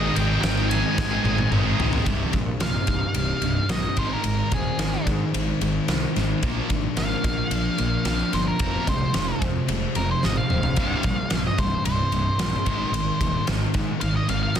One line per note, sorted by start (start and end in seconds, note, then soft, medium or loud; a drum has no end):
0.00 0.42 G#2 loud
0.00 0.45 G#2 medium
0.00 0.43 D#3 loud
0.00 0.45 D#3 medium
0.00 0.18 G#3 medium
0.00 0.30 G#3 medium
0.00 0.19 C4 loud
0.00 0.30 C4 loud
0.00 0.20 D#4 loud
0.00 0.29 D#4 loud
0.00 0.21 G#4 medium
0.00 0.28 G#4 loud
0.00 2.05 C5 medium
0.00 0.17 D#5 loud
0.00 2.03 D#5 medium
0.00 2.05 G#5 medium
0.00 2.04 D#6 medium
0.16 0.36 G#1 medium
0.16 0.35 G#3 medium
0.16 0.41 G5 loud
0.16 ride medium
0.20 0.34 C4 medium
0.20 0.33 D#4 medium
0.20 0.32 G#4 medium
0.30 0.43 G#3 medium
0.30 0.43 C4 medium
0.30 0.44 D#4 medium
0.30 0.47 G#4 medium
0.35 0.45 G#3 medium
0.35 0.46 C4 medium
0.35 0.46 D#4 medium
0.42 0.83 G#1 medium
0.42 0.99 G#2 loud
0.42 0.99 D#3 loud
0.42 0.69 G5 loud
0.42 snare loud
0.42 ride loud
0.46 0.71 G#3 loud
0.46 0.71 C4 loud
0.46 0.73 D#4 loud
0.46 0.74 G#4 loud
0.69 0.87 G#3 medium
0.69 0.86 C4 medium
0.69 1.48 G#5 loud
0.69 ride medium
0.74 0.86 D#4 medium
0.74 0.85 G#4 medium
0.85 1.14 C4 medium
0.85 1.12 D#4 medium
0.85 1.12 G#4 medium
0.85 muted distorted electric guitar stroke soft
0.89 1.13 G#3 medium
0.98 1.18 G#1 loud
0.98 kick loud
0.98 snare medium
1.13 1.25 G#3 medium
1.13 1.26 C4 medium
1.13 1.27 D#4 medium
1.13 1.28 G#4 medium
1.24 1.44 G#1 medium
1.24 1.41 G#3 medium
1.24 1.41 C4 medium
1.24 high tom medium
1.29 1.40 D#4 medium
1.29 1.38 G#4 loud
1.38 1.52 C4 medium
1.38 1.53 D#4 medium
1.38 1.54 G#4 medium
1.38 muted distorted electric guitar stroke medium
1.38 high tom medium
1.43 1.52 G#3 medium
1.51 1.71 G#1 medium
1.51 1.93 G#2 medium
1.51 1.94 D#3 loud
1.51 1.67 G#3 medium
1.51 1.66 C4 loud
1.51 1.66 D#4 loud
1.51 mid tom loud
1.55 1.65 G#4 loud
1.66 1.77 G#3 medium
1.66 1.79 C4 medium
1.66 1.79 D#4 medium
1.66 1.80 G#4 medium
1.79 1.99 A#1 medium
1.79 2.05 G#3 medium
1.79 2.06 C4 medium
1.79 2.06 D#4 medium
1.79 2.06 G#4 loud
1.79 floor tom loud
1.93 floor tom loud
2.06 2.23 C1 medium
2.06 2.32 C2 medium
2.06 3.43 C2 medium
2.06 2.33 G2 medium
2.06 2.33 C3 medium
2.06 kick loud
2.06 ride medium
2.33 2.50 A#1 medium
2.33 2.59 C2 medium
2.33 2.59 G2 medium
2.33 3.15 C3 medium
2.33 kick medium
2.33 ride medium
2.60 2.78 A#1 medium
2.60 2.86 C2 medium
2.60 2.86 G2 medium
2.60 3.97 D#4 medium
2.60 3.67 F5 medium
2.60 snare loud
2.60 ride medium
2.87 3.05 C1 medium
2.87 3.13 C2 medium
2.87 3.13 G2 medium
2.87 3.98 G3 medium
2.87 kick medium
2.87 ride medium
3.14 3.32 C1 medium
3.14 3.41 C2 medium
3.14 3.41 G2 medium
3.14 3.69 C3 medium
3.14 ride loud
3.41 3.59 C1 medium
3.41 3.68 C2 medium
3.41 3.68 G2 medium
3.41 3.98 G2 medium
3.41 ride medium
3.69 3.86 A#1 medium
3.69 3.95 C2 medium
3.69 3.95 G2 medium
3.69 3.98 C3 medium
3.69 3.97 D#5 medium
3.69 snare loud
3.69 ride medium
3.97 4.14 G#1 medium
3.97 4.23 G#2 medium
3.97 4.25 G#2 medium
3.97 4.24 D#3 medium
3.97 4.24 G#3 medium
3.97 4.11 C5 medium
3.97 kick medium
3.97 ride medium
4.13 4.52 A#4 medium
4.24 4.41 G#1 medium
4.24 4.50 G#2 medium
4.24 5.62 G#2 medium
4.24 4.50 D#3 medium
4.24 ride loud
4.52 4.69 D#1 medium
4.52 4.76 G#2 medium
4.52 4.77 D#3 medium
4.52 5.33 C4 medium
4.52 5.06 G#4 loud
4.52 kick medium
4.52 ride medium
4.78 4.96 G#1 medium
4.78 5.04 G#2 medium
4.78 5.04 D#3 medium
4.78 6.16 G#4 medium
4.78 snare loud
4.78 ride loud
5.06 5.23 G#2 medium
5.06 5.31 G#2 medium
5.06 5.31 D#3 medium
5.06 6.14 D#4 medium
5.06 kick medium
5.06 ride medium
5.34 5.51 G#1 medium
5.34 5.59 G#2 medium
5.34 5.59 D#3 medium
5.34 5.87 C4 medium
5.34 ride medium
5.61 5.78 G#1 medium
5.61 5.86 G#2 medium
5.61 5.86 D#3 medium
5.61 6.43 G#3 medium
5.61 ride medium
5.88 6.05 C2 medium
5.88 6.13 G#2 medium
5.88 6.14 D#3 medium
5.88 6.43 C4 medium
5.88 snare loud
5.88 ride medium
6.15 6.33 G#1 medium
6.15 6.40 G#2 medium
6.15 6.41 D#3 medium
6.15 6.43 D#4 medium
6.15 snare soft
6.15 ride medium
6.42 6.59 A#1 medium
6.42 7.79 A#2 medium
6.42 6.69 A#2 medium
6.42 6.69 F3 medium
6.42 6.69 A#3 medium
6.42 kick loud
6.42 ride medium
6.70 6.87 G#1 medium
6.70 6.94 A#2 medium
6.70 6.95 F3 medium
6.70 7.50 D4 medium
6.70 kick medium
6.70 ride medium
6.96 7.14 G#1 medium
6.96 7.21 A#2 medium
6.96 7.21 F3 medium
6.96 8.33 A#4 medium
6.96 8.03 F5 loud
6.96 snare loud
6.96 ride medium
7.24 7.41 A#1 medium
7.24 7.48 A#2 medium
7.24 7.49 F3 medium
7.24 8.31 F4 medium
7.24 kick medium
7.24 ride medium
7.51 7.68 A#1 medium
7.51 7.76 A#2 medium
7.51 7.76 F3 medium
7.51 8.04 D4 medium
7.51 ride loud
7.78 7.96 A#1 medium
7.78 8.03 A#2 medium
7.78 8.03 F3 medium
7.78 8.60 A#3 medium
7.78 ride medium
8.05 8.22 A#1 medium
8.05 8.30 A#2 medium
8.05 8.30 F3 medium
8.05 8.60 D4 medium
8.05 8.32 F5 medium
8.05 snare loud
8.05 ride medium
8.32 8.50 G1 medium
8.32 8.57 A#2 medium
8.32 8.57 F3 medium
8.32 8.60 F4 medium
8.32 8.47 C5 medium
8.32 snare soft
8.32 ride medium
8.47 8.87 A#4 medium
8.59 8.77 F1 medium
8.59 9.95 F2 medium
8.59 8.85 F2 medium
8.59 8.85 C3 medium
8.59 8.86 F3 medium
8.59 kick loud
8.59 ride medium
8.86 9.04 C1 medium
8.86 9.11 F2 medium
8.86 9.11 C3 medium
8.86 9.68 G#3 medium
8.86 9.41 C5 loud
8.86 kick medium
8.86 ride medium
9.14 9.31 F1 medium
9.14 9.38 F2 medium
9.14 9.38 C3 medium
9.14 10.50 F4 medium
9.14 snare loud
9.14 ride medium
9.40 9.66 F2 medium
9.40 9.58 F2 medium
9.40 9.66 C3 medium
9.40 10.50 C4 medium
9.40 kick medium
9.40 ride medium
9.67 9.85 F1 loud
9.67 9.93 F2 medium
9.67 9.92 C3 medium
9.67 10.22 G#3 medium
9.67 ride loud
9.95 10.13 F1 medium
9.95 10.21 F2 medium
9.95 10.21 C3 medium
9.95 10.78 F3 medium
9.95 10.09 A#4 medium
9.95 ride medium
10.11 10.23 C5 medium
10.23 10.41 G#1 medium
10.23 10.48 F2 medium
10.23 10.48 C3 medium
10.23 10.78 G#3 medium
10.23 10.37 D#5 medium
10.23 snare medium
10.36 11.42 F5 medium
10.36 high tom medium
10.50 10.68 D1 medium
10.50 10.75 F2 medium
10.50 10.75 C3 medium
10.50 10.78 C4 medium
10.50 mid tom medium
10.63 floor tom medium
10.76 10.93 C1 medium
10.76 11.02 C2 medium
10.76 11.03 G2 medium
10.76 11.04 C3 medium
10.76 kick loud
10.76 ride medium
11.03 11.21 A#1 medium
11.03 11.28 C2 medium
11.03 11.29 G2 medium
11.03 kick medium
11.03 ride medium
11.30 11.49 A#1 medium
11.30 11.56 C2 medium
11.30 11.56 G2 medium
11.30 snare loud
11.30 ride medium
11.47 11.59 D#5 medium
11.58 11.75 C1 medium
11.58 11.83 C2 medium
11.58 11.83 G2 medium
11.58 11.84 C5 medium
11.58 kick medium
11.58 ride medium
11.85 12.02 C1 medium
11.85 12.10 C2 medium
11.85 12.10 G2 medium
11.85 13.44 C5 medium
11.85 ride medium
12.12 12.29 C1 medium
12.12 12.37 C2 medium
12.12 12.37 G2 medium
12.12 ride medium
12.38 12.55 A#1 medium
12.38 12.64 C2 medium
12.38 12.64 G2 medium
12.38 snare loud
12.38 ride medium
12.65 12.83 G#1 medium
12.65 12.92 G#2 medium
12.65 12.91 D#3 loud
12.65 12.92 G#3 loud
12.65 kick loud
12.65 ride medium
12.92 13.09 G#1 medium
12.92 13.18 G#2 medium
12.92 13.18 D#3 medium
12.92 ride loud
13.20 13.37 D#1 medium
13.20 13.45 G#2 medium
13.20 13.46 D#3 medium
13.20 kick medium
13.20 ride medium
13.47 13.65 G#1 medium
13.47 13.72 G#2 medium
13.47 13.72 D#3 medium
13.47 snare loud
13.47 ride medium
13.74 13.92 G#2 medium
13.74 13.99 G#2 medium
13.74 13.99 D#3 medium
13.74 kick medium
13.74 ride medium
14.01 14.19 G#1 medium
14.01 14.27 G#2 medium
14.01 14.27 D#3 medium
14.01 14.15 F5 medium
14.01 ride loud
14.16 14.29 D#5 medium
14.29 14.46 G#1 medium
14.29 14.54 G#2 medium
14.29 14.54 D#3 medium
14.29 14.42 F5 medium
14.29 ride medium
14.43 14.55 F5 medium
14.55 14.60 C2 medium
14.55 14.60 G#2 medium
14.55 14.60 D#3 medium
14.55 14.60 D#5 medium
14.55 snare loud
14.55 ride medium